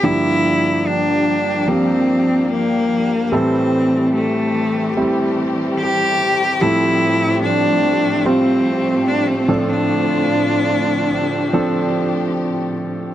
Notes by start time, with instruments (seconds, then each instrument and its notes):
0.03 grand piano G2 D3 F3 A#3 D4 G4, string section F3 G3 A#3 D4 G4, cello E4
0.86 cello D4
1.68 grand piano F3 A#3 D4 G4, cello C4
2.52 cello A#3
3.31 grand piano A2 E3 G3 C4 E4 A4, string section E3 A3 C4 G4, cello C4
4.16 cello A3
4.97 grand piano G3 C4 E4 G4
5.80 cello G4
6.59 string section A2 F3, grand piano A2 F3 G3 C4 A4, cello E4
7.43 cello D4
8.25 grand piano G3 C4 F4 C5, cello C4
9.08 cello D4
9.28 cello C4
9.48 grand piano A2 F3 C4 D4 A4, string section D3 F3 F4
9.69 cello D4
11.12 string section G4
11.53 grand piano F3 C4 D4 A4